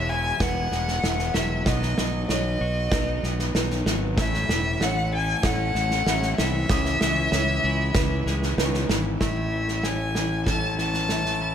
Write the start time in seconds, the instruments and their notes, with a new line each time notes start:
Already playing: fingered electric bass E1, clean electric guitar E2 B2 G#3, pedal steel guitar G#3 E4 F#4, felt piano C#5, violin E5
0.09 clean electric guitar E4, violin G#5
0.40 fingered electric bass E1, clean electric guitar B3, felt piano B4, violin F#5, kick, snare
0.72 fingered electric bass E1, clean electric guitar G#3, snare
0.88 snare
1.03 fingered electric bass E1, clean electric guitar B3, felt piano E5, snare
1.19 snare
1.34 fingered electric bass E1, clean electric guitar F#3, violin E5, snare
1.66 fingered electric bass B1, clean electric guitar B2, pedal steel guitar B3 D#4, violin D#5, felt piano D#5, kick, snare
1.82 snare
1.98 fingered electric bass B1, clean electric guitar F#3, snare
2.29 fingered electric bass B1, clean electric guitar B3, felt piano C#5, violin D#5, snare
2.61 fingered electric bass B1, clean electric guitar F#4
2.92 fingered electric bass B1, clean electric guitar D#4, felt piano B4, kick, snare
3.23 fingered electric bass B1, clean electric guitar B3, snare
3.39 snare
3.55 fingered electric bass B1, clean electric guitar D#4, felt piano B4, snare
3.70 snare
3.86 fingered electric bass G#1, clean electric guitar F#3, snare
4.16 fingered electric bass A1, clean electric guitar A2, pedal steel guitar A3 C#4 E4, felt piano E5, violin E5, kick, snare
4.34 snare
4.49 fingered electric bass E1, clean electric guitar E3, snare
4.80 fingered electric bass A1, clean electric guitar A3, felt piano C#5, violin F#5, snare
5.13 clean electric guitar A4, violin G#5
5.43 fingered electric bass A1, clean electric guitar C#4, felt piano A4, violin F#5, kick, snare
5.75 fingered electric bass A1, clean electric guitar A3, snare
5.91 snare
6.06 fingered electric bass A1, clean electric guitar C#4, felt piano E5, snare
6.22 snare
6.38 fingered electric bass C2, clean electric guitar E3, violin E5, snare
6.69 fingered electric bass C#2, clean electric guitar C#3, pedal steel guitar E3, felt piano D#6, kick, snare
6.85 snare
7.01 fingered electric bass C#2, clean electric guitar E3, snare
7.32 fingered electric bass C#2, clean electric guitar G#3, felt piano C#5, snare
7.64 fingered electric bass C#2, clean electric guitar E4
7.95 fingered electric bass C#2, felt piano B4, kick, snare
8.26 fingered electric bass C#2, clean electric guitar G#3, snare
8.43 snare
8.57 fingered electric bass C#2, clean electric guitar D#4, felt piano B4, snare
8.74 snare
8.89 fingered electric bass G#1, clean electric guitar E3, snare
9.21 fingered electric bass A1, clean electric guitar A2, pedal steel guitar A3 E4 C#5, felt piano E5, violin E5, kick, snare
9.53 clean electric guitar E3
9.68 snare
9.83 clean electric guitar A3, felt piano C#5, violin G#5, snare
10.15 clean electric guitar E3, snare
10.46 clean electric guitar C#4, felt piano A4, violin A5, kick, snare
10.78 clean electric guitar E3, violin A5, snare
10.94 snare
11.09 clean electric guitar A3, felt piano E5, snare
11.26 snare
11.42 clean electric guitar E3